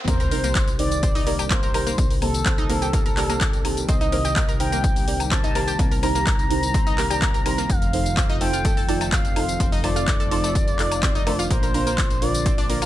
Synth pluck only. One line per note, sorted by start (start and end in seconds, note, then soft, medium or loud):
0.08 0.15 A#3 medium
0.08 0.15 A#4 medium
0.20 0.23 A#4 medium
0.20 0.23 A#5 medium
0.32 0.39 A#4 medium
0.32 0.39 A#5 medium
0.44 0.48 A#3 medium
0.44 0.48 A#4 medium
1.03 1.08 C4 medium
1.03 1.08 C5 medium
1.15 1.22 D#4 loud
1.15 1.22 D#5 medium
1.27 1.31 A#3 medium
1.27 1.31 A#4 medium
1.39 1.42 G4 medium
1.39 1.42 G5 medium
1.51 1.58 A#3 medium
1.51 1.58 A#4 medium
1.63 1.66 A#4 medium
1.63 1.66 A#5 medium
1.74 1.81 A#4 medium
1.74 1.81 A#5 medium
1.87 1.91 A#3 medium
1.87 1.91 A#4 medium
2.46 2.50 C4 medium
2.46 2.50 C5 medium
2.58 2.65 D#4 loud
2.58 2.65 D#5 medium
2.70 2.74 A#3 medium
2.70 2.74 A#4 medium
2.82 2.85 G4 medium
2.82 2.85 G5 medium
2.93 3.00 A#3 medium
2.93 3.00 A#4 medium
3.06 3.08 A#4 medium
3.06 3.08 A#5 medium
3.17 3.24 A#4 medium
3.17 3.24 A#5 medium
3.30 3.34 A#3 medium
3.30 3.34 A#4 medium
3.89 3.93 C4 medium
3.89 3.93 C5 medium
4.01 4.08 D#4 loud
4.01 4.08 D#5 medium
4.12 4.17 A#3 medium
4.12 4.17 A#4 medium
4.25 4.27 G4 medium
4.25 4.27 G5 medium
4.36 4.43 A#3 medium
4.36 4.43 A#4 medium
4.49 4.51 A#4 medium
4.49 4.51 A#5 medium
4.60 4.67 A#4 medium
4.60 4.67 A#5 medium
4.72 4.77 A#3 medium
4.72 4.77 A#4 medium
5.32 5.36 C4 medium
5.32 5.36 C5 medium
5.44 5.50 D#4 loud
5.44 5.50 D#5 medium
5.55 5.60 A#3 medium
5.55 5.60 A#4 medium
5.68 5.70 G4 medium
5.68 5.70 G5 medium
5.79 5.86 A#3 medium
5.79 5.86 A#4 medium
5.91 5.94 A#4 medium
5.91 5.94 A#5 medium
6.03 6.10 A#4 medium
6.03 6.10 A#5 medium
6.15 6.20 A#3 medium
6.15 6.20 A#4 medium
6.74 6.79 C4 medium
6.74 6.79 C5 medium
6.87 6.93 D#4 loud
6.87 6.93 D#5 medium
6.98 7.03 A#3 medium
6.98 7.03 A#4 medium
7.11 7.13 G4 medium
7.11 7.13 G5 medium
7.22 7.29 A#3 medium
7.22 7.29 A#4 medium
7.34 7.37 A#4 medium
7.34 7.37 A#5 medium
7.46 7.53 A#4 medium
7.46 7.53 A#5 medium
7.58 7.62 A#3 medium
7.58 7.62 A#4 medium
8.17 8.22 C4 medium
8.17 8.22 C5 medium
8.30 8.36 D#4 loud
8.30 8.36 D#5 medium
8.41 8.46 A3 medium
8.41 8.46 A4 medium
8.53 8.56 F4 medium
8.53 8.56 F5 medium
8.65 8.72 A3 medium
8.65 8.72 A4 medium
8.77 8.80 A4 medium
8.77 8.80 A5 medium
8.89 8.96 A4 medium
8.89 8.96 A5 medium
9.01 9.05 A3 medium
9.01 9.05 A4 medium
9.60 9.65 C4 medium
9.60 9.65 C5 medium
9.72 9.79 D#4 loud
9.72 9.79 D#5 medium
9.84 9.89 A3 medium
9.84 9.89 A4 medium
9.96 9.99 F4 medium
9.96 9.99 F5 medium
10.08 10.15 A3 medium
10.08 10.15 A4 medium
10.20 10.23 A4 medium
10.20 10.23 A5 medium
10.31 10.38 A4 medium
10.31 10.39 A5 medium
10.44 10.48 A3 medium
10.44 10.48 A4 medium
11.03 11.08 C4 medium
11.03 11.08 C5 medium
11.15 11.22 D#4 loud
11.15 11.22 D#5 medium
11.27 11.31 A3 medium
11.27 11.31 A4 medium
11.39 11.42 F4 medium
11.39 11.42 F5 medium
11.51 11.58 A#3 medium
11.51 11.58 A#4 medium
11.63 11.65 A#4 medium
11.63 11.65 A#5 medium
11.74 11.81 A#4 medium
11.74 11.81 A#5 medium
11.87 11.91 A#3 medium
11.87 11.91 A#4 medium
12.46 12.50 C4 medium
12.46 12.50 C5 medium
12.58 12.65 D4 loud
12.58 12.65 D5 medium
12.70 12.74 A#3 medium
12.70 12.74 A#4 medium
12.82 12.85 F4 medium
12.82 12.85 F5 medium